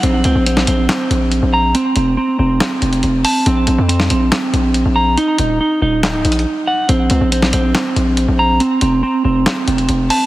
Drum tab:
HH |x-----x-----x-----x-----x-----x-----x-----------|x-----x-----------------x-----x--x--x-----o-----|x-----x-----x-----x-----x-----x-----x-----------|x-----x-----------------x-----x-x-x-------------|
CP |------------------------x-----------------------|------------------------x-----------------------|------------------------x-----------------------|------------------------x-----------------------|
SD |---------------o--------o-----------------------|------------------------o-----------------------|---------------o--------o-----------------------|------------------------o-----------------------|

HH |x-----x-----x-----x-----x-----x-----x-----------|x-----x-----------------x-----x--x--x-----o-----|
CP |------------------------x-----------------------|------------------------x-----------------------|
SD |---------------o--------o-----------------------|------------------------o-----------------------|